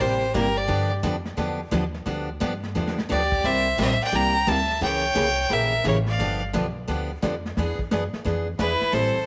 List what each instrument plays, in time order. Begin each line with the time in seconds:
0.00 upright bass A1, steel-string acoustic guitar C3 G3 A#3 E4 G4, fiddle G4 C5, brush sweep, kick, snare
0.34 upright bass G1, steel-string acoustic guitar C3 G3 A#3 E4 G4, fiddle G4 A#4, kick, snare, hi-hat pedal
0.57 fiddle G4 D5
0.68 upright bass G2, steel-string acoustic guitar D3 F3 B3 D4 G4, brush sweep, kick, snare
1.03 upright bass F2, steel-string acoustic guitar D3 F3 B3 D4 G4, kick, snare, hi-hat pedal
1.25 snare
1.37 upright bass E2, steel-string acoustic guitar D3 F3 B3 D4 G4, brush sweep, kick, snare
1.71 upright bass D#2, steel-string acoustic guitar D3 F3 B3 D4 G4, kick, snare, hi-hat pedal
1.94 snare
2.06 upright bass D2, steel-string acoustic guitar D3 F3 B3 D4 G4, brush sweep, kick, snare
2.40 upright bass G2, steel-string acoustic guitar D3 F3 B3 D4 G4, kick, snare, hi-hat pedal
2.63 snare
2.75 upright bass E2, steel-string acoustic guitar D3 F3 B3 D4 G4, snare
2.87 snare
2.99 snare
3.09 upright bass D2, steel-string acoustic guitar D3 F3 B3 D4 G4, fiddle G4 D5, snare, hi-hat pedal
3.32 kick, crash
3.44 upright bass C2, steel-string acoustic guitar C3 G3 A#3 E4 G4, fiddle C5 E5, brush sweep, kick, snare
3.78 upright bass A#1, steel-string acoustic guitar C3 G3 A#3 E4 G4, fiddle C5 E5, kick, snare, hi-hat pedal
4.01 fiddle D5 G5, muted upright bass stroke
4.12 upright bass C2, steel-string acoustic guitar C3 G3 A#3 E4 G4, fiddle G5 A#5, brush sweep, kick, snare
4.47 upright bass D2, steel-string acoustic guitar C3 G3 A#3 E4 G4, fiddle A5, kick, snare, hi-hat pedal
4.51 fiddle E5
4.70 snare
4.81 upright bass C#2, steel-string acoustic guitar C#3 E3 A#3 C#4 G4, fiddle C#5 G5, brush sweep, kick, snare
5.15 upright bass C2, steel-string acoustic guitar C#3 E3 A#3 C#4 G4, kick, snare, hi-hat pedal
5.49 upright bass A#1, steel-string acoustic guitar C#3 E3 A#3 C#4 G4, fiddle A#4 E5, brush sweep, kick, snare
5.84 upright bass A1, steel-string acoustic guitar C#3 E3 A#3 C#4 G4, fiddle A#4 C#5, kick, snare, hi-hat pedal
6.06 fiddle D5 F5, snare
6.19 upright bass G1, steel-string acoustic guitar D3 F3 B3 D4 G4, brush sweep, kick, snare
6.53 upright bass B1, steel-string acoustic guitar D3 F3 B3 D4 G4, kick, snare, hi-hat pedal
6.88 upright bass D2, steel-string acoustic guitar D3 F3 B3 D4 G4, brush sweep, kick, snare
7.22 upright bass F2, steel-string acoustic guitar D3 F3 B3 D4 G4, kick, snare, hi-hat pedal
7.45 snare
7.57 upright bass E2, steel-string acoustic guitar E3 B3 D4 G#4, brush sweep, kick, snare
7.79 kick
7.91 upright bass F#2, steel-string acoustic guitar E3 B3 D4 G#4, kick, snare, hi-hat pedal
8.13 muted upright bass stroke, snare
8.25 upright bass F2, steel-string acoustic guitar E3 B3 D4 G#4, brush sweep, kick, snare
8.59 upright bass E2, steel-string acoustic guitar E3 B3 D4 G#4, fiddle E4 B4, kick, snare, hi-hat pedal
8.81 muted upright bass stroke, snare
8.92 upright bass A1, steel-string acoustic guitar E3 G3 C4 E4 A4, fiddle A4 C5, brush sweep, kick, snare
9.16 muted upright bass stroke